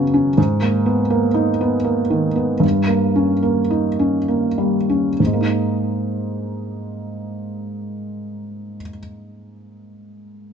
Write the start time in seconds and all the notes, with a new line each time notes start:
Already playing: F#2 C#3 B3 C#4 F#4
0.14 C#4
0.38 G#2
0.61 A#3
0.86 B3
1.10 A#3
1.34 D#4
1.61 B3
1.84 A#3
2.10 D#3
2.36 B3
2.60 G2
2.87 A#3
3.15 C#4
3.43 A#3
3.70 D#4
3.99 C#4
4.28 A#3
4.58 G3
4.89 C#4
5.20 G#2
5.26 G#3
5.33 A#3
5.41 D#4